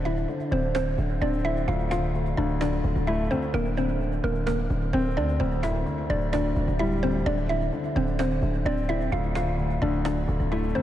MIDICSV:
0, 0, Header, 1, 5, 480
1, 0, Start_track
1, 0, Tempo, 465116
1, 1733, Time_signature, 4, 2, 24, 8
1, 11168, End_track
2, 0, Start_track
2, 0, Title_t, "Synth pluck"
2, 0, Program_c, 0, 84
2, 54, Note_on_c, 0, 76, 83
2, 62, Note_on_c, 0, 64, 59
2, 504, Note_off_c, 0, 76, 0
2, 508, Note_off_c, 0, 64, 0
2, 536, Note_on_c, 0, 72, 72
2, 544, Note_on_c, 0, 60, 61
2, 720, Note_off_c, 0, 72, 0
2, 724, Note_off_c, 0, 60, 0
2, 773, Note_on_c, 0, 72, 84
2, 782, Note_on_c, 0, 60, 65
2, 1224, Note_off_c, 0, 72, 0
2, 1229, Note_off_c, 0, 60, 0
2, 1255, Note_on_c, 0, 74, 85
2, 1263, Note_on_c, 0, 62, 65
2, 1439, Note_off_c, 0, 74, 0
2, 1443, Note_off_c, 0, 62, 0
2, 1493, Note_on_c, 0, 76, 90
2, 1501, Note_on_c, 0, 64, 68
2, 1678, Note_off_c, 0, 76, 0
2, 1683, Note_off_c, 0, 64, 0
2, 1733, Note_on_c, 0, 77, 81
2, 1741, Note_on_c, 0, 65, 61
2, 1917, Note_off_c, 0, 77, 0
2, 1922, Note_off_c, 0, 65, 0
2, 1971, Note_on_c, 0, 77, 86
2, 1979, Note_on_c, 0, 65, 65
2, 2423, Note_off_c, 0, 77, 0
2, 2427, Note_off_c, 0, 65, 0
2, 2450, Note_on_c, 0, 74, 76
2, 2458, Note_on_c, 0, 62, 65
2, 2636, Note_off_c, 0, 74, 0
2, 2641, Note_off_c, 0, 62, 0
2, 2692, Note_on_c, 0, 74, 88
2, 2700, Note_on_c, 0, 62, 69
2, 3143, Note_off_c, 0, 74, 0
2, 3148, Note_off_c, 0, 62, 0
2, 3171, Note_on_c, 0, 76, 80
2, 3180, Note_on_c, 0, 64, 64
2, 3357, Note_off_c, 0, 76, 0
2, 3362, Note_off_c, 0, 64, 0
2, 3413, Note_on_c, 0, 72, 73
2, 3421, Note_on_c, 0, 60, 58
2, 3598, Note_off_c, 0, 72, 0
2, 3603, Note_off_c, 0, 60, 0
2, 3652, Note_on_c, 0, 70, 103
2, 3660, Note_on_c, 0, 58, 74
2, 3837, Note_off_c, 0, 70, 0
2, 3842, Note_off_c, 0, 58, 0
2, 3895, Note_on_c, 0, 72, 77
2, 3903, Note_on_c, 0, 60, 62
2, 4345, Note_off_c, 0, 72, 0
2, 4349, Note_off_c, 0, 60, 0
2, 4374, Note_on_c, 0, 70, 77
2, 4381, Note_on_c, 0, 58, 59
2, 4558, Note_off_c, 0, 70, 0
2, 4563, Note_off_c, 0, 58, 0
2, 4609, Note_on_c, 0, 70, 85
2, 4617, Note_on_c, 0, 58, 70
2, 5062, Note_off_c, 0, 70, 0
2, 5066, Note_off_c, 0, 58, 0
2, 5090, Note_on_c, 0, 72, 86
2, 5099, Note_on_c, 0, 60, 73
2, 5276, Note_off_c, 0, 72, 0
2, 5281, Note_off_c, 0, 60, 0
2, 5335, Note_on_c, 0, 74, 85
2, 5342, Note_on_c, 0, 62, 68
2, 5519, Note_off_c, 0, 74, 0
2, 5523, Note_off_c, 0, 62, 0
2, 5571, Note_on_c, 0, 72, 88
2, 5580, Note_on_c, 0, 60, 67
2, 5756, Note_off_c, 0, 72, 0
2, 5762, Note_off_c, 0, 60, 0
2, 5810, Note_on_c, 0, 76, 81
2, 5818, Note_on_c, 0, 64, 65
2, 6262, Note_off_c, 0, 76, 0
2, 6267, Note_off_c, 0, 64, 0
2, 6294, Note_on_c, 0, 74, 80
2, 6303, Note_on_c, 0, 62, 60
2, 6478, Note_off_c, 0, 74, 0
2, 6484, Note_off_c, 0, 62, 0
2, 6531, Note_on_c, 0, 74, 81
2, 6539, Note_on_c, 0, 62, 69
2, 6983, Note_off_c, 0, 74, 0
2, 6987, Note_off_c, 0, 62, 0
2, 7011, Note_on_c, 0, 76, 82
2, 7020, Note_on_c, 0, 64, 61
2, 7197, Note_off_c, 0, 76, 0
2, 7202, Note_off_c, 0, 64, 0
2, 7253, Note_on_c, 0, 72, 79
2, 7262, Note_on_c, 0, 60, 54
2, 7437, Note_off_c, 0, 72, 0
2, 7443, Note_off_c, 0, 60, 0
2, 7494, Note_on_c, 0, 74, 97
2, 7503, Note_on_c, 0, 62, 76
2, 7678, Note_off_c, 0, 74, 0
2, 7684, Note_off_c, 0, 62, 0
2, 7733, Note_on_c, 0, 76, 84
2, 7742, Note_on_c, 0, 64, 61
2, 8184, Note_off_c, 0, 76, 0
2, 8188, Note_off_c, 0, 64, 0
2, 8215, Note_on_c, 0, 72, 71
2, 8224, Note_on_c, 0, 60, 61
2, 8399, Note_off_c, 0, 72, 0
2, 8404, Note_off_c, 0, 60, 0
2, 8453, Note_on_c, 0, 72, 89
2, 8461, Note_on_c, 0, 60, 67
2, 8904, Note_off_c, 0, 72, 0
2, 8908, Note_off_c, 0, 60, 0
2, 8937, Note_on_c, 0, 74, 90
2, 8945, Note_on_c, 0, 62, 65
2, 9120, Note_off_c, 0, 74, 0
2, 9125, Note_off_c, 0, 62, 0
2, 9174, Note_on_c, 0, 76, 92
2, 9182, Note_on_c, 0, 64, 68
2, 9358, Note_off_c, 0, 76, 0
2, 9363, Note_off_c, 0, 64, 0
2, 9415, Note_on_c, 0, 77, 81
2, 9424, Note_on_c, 0, 65, 62
2, 9599, Note_off_c, 0, 77, 0
2, 9604, Note_off_c, 0, 65, 0
2, 9653, Note_on_c, 0, 77, 87
2, 9662, Note_on_c, 0, 65, 64
2, 10104, Note_off_c, 0, 77, 0
2, 10108, Note_off_c, 0, 65, 0
2, 10132, Note_on_c, 0, 74, 76
2, 10140, Note_on_c, 0, 62, 64
2, 10317, Note_off_c, 0, 74, 0
2, 10322, Note_off_c, 0, 62, 0
2, 10372, Note_on_c, 0, 74, 89
2, 10380, Note_on_c, 0, 62, 68
2, 10823, Note_off_c, 0, 74, 0
2, 10828, Note_off_c, 0, 62, 0
2, 10854, Note_on_c, 0, 76, 82
2, 10861, Note_on_c, 0, 64, 65
2, 11038, Note_off_c, 0, 76, 0
2, 11043, Note_off_c, 0, 64, 0
2, 11095, Note_on_c, 0, 72, 74
2, 11103, Note_on_c, 0, 60, 57
2, 11168, Note_off_c, 0, 60, 0
2, 11168, Note_off_c, 0, 72, 0
2, 11168, End_track
3, 0, Start_track
3, 0, Title_t, "Grand piano"
3, 0, Program_c, 1, 0
3, 0, Control_c, 1, 64, 127
3, 0, Note_on_c, 1, 50, 90
3, 50, Note_off_c, 1, 50, 0
3, 50, Note_on_c, 1, 50, 68
3, 277, Note_off_c, 1, 50, 0
3, 293, Note_on_c, 1, 50, 70
3, 515, Note_off_c, 1, 50, 0
3, 531, Note_on_c, 1, 50, 87
3, 756, Note_off_c, 1, 50, 0
3, 772, Note_on_c, 1, 50, 74
3, 999, Note_off_c, 1, 50, 0
3, 1014, Note_on_c, 1, 50, 71
3, 1252, Note_on_c, 1, 60, 92
3, 1475, Note_off_c, 1, 50, 0
3, 1490, Note_on_c, 1, 50, 78
3, 1730, Note_on_c, 1, 38, 82
3, 1731, Note_off_c, 1, 50, 0
3, 1732, Note_off_c, 1, 60, 0
3, 1746, Control_c, 1, 64, 0
3, 1920, Control_c, 1, 64, 127
3, 1955, Note_off_c, 1, 38, 0
3, 1971, Note_on_c, 1, 38, 76
3, 2194, Note_off_c, 1, 38, 0
3, 2209, Note_on_c, 1, 38, 68
3, 2436, Note_off_c, 1, 38, 0
3, 2452, Note_on_c, 1, 38, 90
3, 2673, Note_off_c, 1, 38, 0
3, 2689, Note_on_c, 1, 38, 75
3, 2914, Note_off_c, 1, 38, 0
3, 2930, Note_on_c, 1, 38, 72
3, 3172, Note_on_c, 1, 57, 97
3, 3399, Note_off_c, 1, 38, 0
3, 3414, Note_on_c, 1, 38, 79
3, 3651, Note_on_c, 1, 50, 88
3, 3652, Note_off_c, 1, 57, 0
3, 3653, Note_off_c, 1, 38, 0
3, 3667, Control_c, 1, 64, 0
3, 3841, Control_c, 1, 64, 127
3, 3874, Note_off_c, 1, 50, 0
3, 3890, Note_on_c, 1, 50, 75
3, 4117, Note_off_c, 1, 50, 0
3, 4132, Note_on_c, 1, 50, 68
3, 4357, Note_off_c, 1, 50, 0
3, 4373, Note_on_c, 1, 50, 85
3, 4595, Note_off_c, 1, 50, 0
3, 4611, Note_on_c, 1, 50, 72
3, 4836, Note_off_c, 1, 50, 0
3, 4852, Note_on_c, 1, 50, 70
3, 5091, Note_on_c, 1, 60, 99
3, 5316, Note_off_c, 1, 50, 0
3, 5332, Note_on_c, 1, 50, 74
3, 5572, Note_off_c, 1, 50, 0
3, 5572, Note_off_c, 1, 60, 0
3, 5572, Note_on_c, 1, 38, 87
3, 5588, Control_c, 1, 64, 0
3, 5763, Control_c, 1, 64, 127
3, 5797, Note_off_c, 1, 38, 0
3, 5813, Note_on_c, 1, 38, 73
3, 6035, Note_off_c, 1, 38, 0
3, 6050, Note_on_c, 1, 38, 69
3, 6280, Note_off_c, 1, 38, 0
3, 6295, Note_on_c, 1, 38, 84
3, 6518, Note_off_c, 1, 38, 0
3, 6533, Note_on_c, 1, 38, 72
3, 6760, Note_off_c, 1, 38, 0
3, 6775, Note_on_c, 1, 38, 66
3, 7012, Note_on_c, 1, 55, 96
3, 7237, Note_off_c, 1, 38, 0
3, 7253, Note_on_c, 1, 38, 68
3, 7492, Note_off_c, 1, 38, 0
3, 7492, Note_off_c, 1, 55, 0
3, 7492, Note_on_c, 1, 50, 90
3, 7505, Control_c, 1, 64, 0
3, 7664, Control_c, 1, 64, 127
3, 7715, Note_off_c, 1, 50, 0
3, 7731, Note_on_c, 1, 50, 70
3, 7957, Note_off_c, 1, 50, 0
3, 7973, Note_on_c, 1, 50, 69
3, 8195, Note_off_c, 1, 50, 0
3, 8210, Note_on_c, 1, 50, 86
3, 8436, Note_off_c, 1, 50, 0
3, 8452, Note_on_c, 1, 50, 75
3, 8679, Note_off_c, 1, 50, 0
3, 8694, Note_on_c, 1, 50, 70
3, 8932, Note_on_c, 1, 60, 95
3, 9155, Note_off_c, 1, 50, 0
3, 9171, Note_on_c, 1, 50, 76
3, 9410, Note_on_c, 1, 38, 84
3, 9411, Note_off_c, 1, 50, 0
3, 9412, Note_off_c, 1, 60, 0
3, 9426, Control_c, 1, 64, 0
3, 9618, Control_c, 1, 64, 127
3, 9635, Note_off_c, 1, 38, 0
3, 9651, Note_on_c, 1, 38, 79
3, 9873, Note_off_c, 1, 38, 0
3, 9889, Note_on_c, 1, 38, 69
3, 10116, Note_off_c, 1, 38, 0
3, 10132, Note_on_c, 1, 38, 94
3, 10354, Note_off_c, 1, 38, 0
3, 10370, Note_on_c, 1, 38, 74
3, 10594, Note_off_c, 1, 38, 0
3, 10610, Note_on_c, 1, 38, 74
3, 10852, Note_on_c, 1, 57, 99
3, 11079, Note_off_c, 1, 38, 0
3, 11095, Note_on_c, 1, 38, 79
3, 11168, Note_off_c, 1, 38, 0
3, 11168, Note_off_c, 1, 57, 0
3, 11168, End_track
4, 0, Start_track
4, 0, Title_t, "808-style bass"
4, 0, Program_c, 2, 38
4, 0, Note_on_c, 2, 26, 114
4, 273, Note_off_c, 2, 26, 0
4, 532, Note_on_c, 2, 26, 101
4, 993, Note_off_c, 2, 26, 0
4, 1012, Note_on_c, 2, 26, 101
4, 1243, Note_off_c, 2, 26, 0
4, 1252, Note_on_c, 2, 26, 106
4, 1713, Note_off_c, 2, 26, 0
4, 1733, Note_on_c, 2, 26, 115
4, 2424, Note_off_c, 2, 26, 0
4, 2452, Note_on_c, 2, 26, 103
4, 2913, Note_off_c, 2, 26, 0
4, 2932, Note_on_c, 2, 26, 102
4, 3047, Note_off_c, 2, 26, 0
4, 3052, Note_on_c, 2, 26, 96
4, 3398, Note_off_c, 2, 26, 0
4, 3652, Note_on_c, 2, 26, 113
4, 4343, Note_off_c, 2, 26, 0
4, 4372, Note_on_c, 2, 26, 100
4, 4833, Note_off_c, 2, 26, 0
4, 4852, Note_on_c, 2, 26, 102
4, 5083, Note_off_c, 2, 26, 0
4, 5092, Note_on_c, 2, 26, 104
4, 5333, Note_on_c, 2, 38, 100
4, 5348, Note_off_c, 2, 26, 0
4, 5561, Note_off_c, 2, 38, 0
4, 5573, Note_on_c, 2, 26, 114
4, 6033, Note_off_c, 2, 26, 0
4, 6293, Note_on_c, 2, 26, 106
4, 6753, Note_off_c, 2, 26, 0
4, 6773, Note_on_c, 2, 26, 101
4, 6888, Note_off_c, 2, 26, 0
4, 6893, Note_on_c, 2, 26, 99
4, 7468, Note_off_c, 2, 26, 0
4, 7492, Note_on_c, 2, 26, 114
4, 7953, Note_off_c, 2, 26, 0
4, 8212, Note_on_c, 2, 26, 105
4, 8673, Note_off_c, 2, 26, 0
4, 8692, Note_on_c, 2, 26, 102
4, 8923, Note_off_c, 2, 26, 0
4, 8932, Note_on_c, 2, 26, 109
4, 9393, Note_off_c, 2, 26, 0
4, 9413, Note_on_c, 2, 26, 114
4, 10104, Note_off_c, 2, 26, 0
4, 10133, Note_on_c, 2, 26, 101
4, 10593, Note_off_c, 2, 26, 0
4, 10613, Note_on_c, 2, 26, 103
4, 10728, Note_off_c, 2, 26, 0
4, 10733, Note_on_c, 2, 26, 96
4, 11078, Note_off_c, 2, 26, 0
4, 11168, End_track
5, 0, Start_track
5, 0, Title_t, "Cajon"
5, 51, Note_on_c, 9, 38, 44
5, 154, Note_off_c, 9, 38, 0
5, 168, Note_on_c, 9, 38, 32
5, 271, Note_off_c, 9, 38, 0
5, 292, Note_on_c, 9, 38, 25
5, 396, Note_off_c, 9, 38, 0
5, 412, Note_on_c, 9, 38, 45
5, 515, Note_off_c, 9, 38, 0
5, 649, Note_on_c, 9, 38, 30
5, 752, Note_off_c, 9, 38, 0
5, 772, Note_on_c, 9, 38, 123
5, 875, Note_off_c, 9, 38, 0
5, 893, Note_on_c, 9, 38, 31
5, 996, Note_off_c, 9, 38, 0
5, 1008, Note_on_c, 9, 38, 40
5, 1111, Note_off_c, 9, 38, 0
5, 1134, Note_on_c, 9, 38, 30
5, 1237, Note_off_c, 9, 38, 0
5, 1252, Note_on_c, 9, 38, 25
5, 1312, Note_off_c, 9, 38, 0
5, 1312, Note_on_c, 9, 38, 31
5, 1372, Note_off_c, 9, 38, 0
5, 1372, Note_on_c, 9, 38, 38
5, 1432, Note_off_c, 9, 38, 0
5, 1432, Note_on_c, 9, 38, 44
5, 1493, Note_off_c, 9, 38, 0
5, 1493, Note_on_c, 9, 38, 45
5, 1597, Note_off_c, 9, 38, 0
5, 1613, Note_on_c, 9, 38, 47
5, 1716, Note_off_c, 9, 38, 0
5, 1732, Note_on_c, 9, 38, 41
5, 1835, Note_off_c, 9, 38, 0
5, 1851, Note_on_c, 9, 38, 34
5, 1955, Note_off_c, 9, 38, 0
5, 1973, Note_on_c, 9, 38, 97
5, 2077, Note_off_c, 9, 38, 0
5, 2089, Note_on_c, 9, 38, 33
5, 2192, Note_off_c, 9, 38, 0
5, 2213, Note_on_c, 9, 38, 26
5, 2316, Note_off_c, 9, 38, 0
5, 2333, Note_on_c, 9, 38, 45
5, 2436, Note_off_c, 9, 38, 0
5, 2569, Note_on_c, 9, 38, 29
5, 2672, Note_off_c, 9, 38, 0
5, 2692, Note_on_c, 9, 38, 121
5, 2795, Note_off_c, 9, 38, 0
5, 2813, Note_on_c, 9, 38, 31
5, 2916, Note_off_c, 9, 38, 0
5, 2929, Note_on_c, 9, 38, 39
5, 3032, Note_off_c, 9, 38, 0
5, 3055, Note_on_c, 9, 38, 29
5, 3158, Note_off_c, 9, 38, 0
5, 3173, Note_on_c, 9, 38, 25
5, 3232, Note_off_c, 9, 38, 0
5, 3232, Note_on_c, 9, 38, 31
5, 3292, Note_off_c, 9, 38, 0
5, 3292, Note_on_c, 9, 38, 39
5, 3352, Note_off_c, 9, 38, 0
5, 3352, Note_on_c, 9, 38, 43
5, 3413, Note_off_c, 9, 38, 0
5, 3413, Note_on_c, 9, 38, 45
5, 3516, Note_off_c, 9, 38, 0
5, 3533, Note_on_c, 9, 38, 48
5, 3636, Note_off_c, 9, 38, 0
5, 3653, Note_on_c, 9, 38, 40
5, 3756, Note_off_c, 9, 38, 0
5, 3771, Note_on_c, 9, 38, 37
5, 3874, Note_off_c, 9, 38, 0
5, 3891, Note_on_c, 9, 38, 48
5, 3994, Note_off_c, 9, 38, 0
5, 4008, Note_on_c, 9, 38, 32
5, 4112, Note_off_c, 9, 38, 0
5, 4132, Note_on_c, 9, 38, 26
5, 4235, Note_off_c, 9, 38, 0
5, 4252, Note_on_c, 9, 38, 44
5, 4355, Note_off_c, 9, 38, 0
5, 4489, Note_on_c, 9, 38, 29
5, 4592, Note_off_c, 9, 38, 0
5, 4612, Note_on_c, 9, 38, 120
5, 4715, Note_off_c, 9, 38, 0
5, 4733, Note_on_c, 9, 38, 31
5, 4836, Note_off_c, 9, 38, 0
5, 4848, Note_on_c, 9, 38, 41
5, 4951, Note_off_c, 9, 38, 0
5, 4974, Note_on_c, 9, 38, 31
5, 5077, Note_off_c, 9, 38, 0
5, 5092, Note_on_c, 9, 38, 26
5, 5152, Note_off_c, 9, 38, 0
5, 5152, Note_on_c, 9, 38, 31
5, 5212, Note_off_c, 9, 38, 0
5, 5212, Note_on_c, 9, 38, 38
5, 5272, Note_off_c, 9, 38, 0
5, 5272, Note_on_c, 9, 38, 42
5, 5333, Note_off_c, 9, 38, 0
5, 5333, Note_on_c, 9, 38, 44
5, 5437, Note_off_c, 9, 38, 0
5, 5452, Note_on_c, 9, 38, 47
5, 5556, Note_off_c, 9, 38, 0
5, 5572, Note_on_c, 9, 38, 39
5, 5676, Note_off_c, 9, 38, 0
5, 5692, Note_on_c, 9, 38, 35
5, 5795, Note_off_c, 9, 38, 0
5, 5813, Note_on_c, 9, 38, 101
5, 5916, Note_off_c, 9, 38, 0
5, 5929, Note_on_c, 9, 38, 33
5, 6032, Note_off_c, 9, 38, 0
5, 6053, Note_on_c, 9, 38, 40
5, 6156, Note_off_c, 9, 38, 0
5, 6409, Note_on_c, 9, 38, 30
5, 6512, Note_off_c, 9, 38, 0
5, 6532, Note_on_c, 9, 38, 120
5, 6635, Note_off_c, 9, 38, 0
5, 6653, Note_on_c, 9, 38, 31
5, 6756, Note_off_c, 9, 38, 0
5, 6768, Note_on_c, 9, 38, 40
5, 6872, Note_off_c, 9, 38, 0
5, 6894, Note_on_c, 9, 38, 30
5, 6998, Note_off_c, 9, 38, 0
5, 7013, Note_on_c, 9, 38, 35
5, 7073, Note_off_c, 9, 38, 0
5, 7073, Note_on_c, 9, 38, 33
5, 7132, Note_off_c, 9, 38, 0
5, 7132, Note_on_c, 9, 38, 36
5, 7192, Note_off_c, 9, 38, 0
5, 7192, Note_on_c, 9, 38, 37
5, 7253, Note_off_c, 9, 38, 0
5, 7253, Note_on_c, 9, 38, 46
5, 7332, Note_off_c, 9, 38, 0
5, 7332, Note_on_c, 9, 38, 36
5, 7412, Note_off_c, 9, 38, 0
5, 7412, Note_on_c, 9, 38, 28
5, 7492, Note_off_c, 9, 38, 0
5, 7492, Note_on_c, 9, 38, 39
5, 7596, Note_off_c, 9, 38, 0
5, 7611, Note_on_c, 9, 38, 37
5, 7714, Note_off_c, 9, 38, 0
5, 7731, Note_on_c, 9, 38, 47
5, 7835, Note_off_c, 9, 38, 0
5, 7849, Note_on_c, 9, 38, 32
5, 7952, Note_off_c, 9, 38, 0
5, 7973, Note_on_c, 9, 38, 26
5, 8076, Note_off_c, 9, 38, 0
5, 8093, Note_on_c, 9, 38, 44
5, 8196, Note_off_c, 9, 38, 0
5, 8329, Note_on_c, 9, 38, 28
5, 8433, Note_off_c, 9, 38, 0
5, 8452, Note_on_c, 9, 38, 120
5, 8556, Note_off_c, 9, 38, 0
5, 8574, Note_on_c, 9, 38, 31
5, 8677, Note_off_c, 9, 38, 0
5, 8689, Note_on_c, 9, 38, 40
5, 8792, Note_off_c, 9, 38, 0
5, 8814, Note_on_c, 9, 38, 30
5, 8918, Note_off_c, 9, 38, 0
5, 8933, Note_on_c, 9, 38, 25
5, 8993, Note_off_c, 9, 38, 0
5, 8993, Note_on_c, 9, 38, 30
5, 9053, Note_off_c, 9, 38, 0
5, 9053, Note_on_c, 9, 38, 37
5, 9113, Note_off_c, 9, 38, 0
5, 9113, Note_on_c, 9, 38, 43
5, 9173, Note_off_c, 9, 38, 0
5, 9173, Note_on_c, 9, 38, 44
5, 9276, Note_off_c, 9, 38, 0
5, 9292, Note_on_c, 9, 38, 47
5, 9396, Note_off_c, 9, 38, 0
5, 9412, Note_on_c, 9, 38, 41
5, 9516, Note_off_c, 9, 38, 0
5, 9531, Note_on_c, 9, 38, 36
5, 9634, Note_off_c, 9, 38, 0
5, 9653, Note_on_c, 9, 38, 102
5, 9756, Note_off_c, 9, 38, 0
5, 9769, Note_on_c, 9, 38, 32
5, 9872, Note_off_c, 9, 38, 0
5, 9892, Note_on_c, 9, 38, 26
5, 9995, Note_off_c, 9, 38, 0
5, 10012, Note_on_c, 9, 38, 45
5, 10115, Note_off_c, 9, 38, 0
5, 10249, Note_on_c, 9, 38, 29
5, 10352, Note_off_c, 9, 38, 0
5, 10372, Note_on_c, 9, 38, 122
5, 10475, Note_off_c, 9, 38, 0
5, 10493, Note_on_c, 9, 38, 31
5, 10596, Note_off_c, 9, 38, 0
5, 10608, Note_on_c, 9, 38, 41
5, 10711, Note_off_c, 9, 38, 0
5, 10734, Note_on_c, 9, 38, 31
5, 10837, Note_off_c, 9, 38, 0
5, 10851, Note_on_c, 9, 38, 26
5, 10912, Note_off_c, 9, 38, 0
5, 10912, Note_on_c, 9, 38, 31
5, 10972, Note_off_c, 9, 38, 0
5, 10972, Note_on_c, 9, 38, 37
5, 11032, Note_off_c, 9, 38, 0
5, 11032, Note_on_c, 9, 38, 43
5, 11093, Note_off_c, 9, 38, 0
5, 11093, Note_on_c, 9, 38, 43
5, 11168, Note_off_c, 9, 38, 0
5, 11168, End_track
0, 0, End_of_file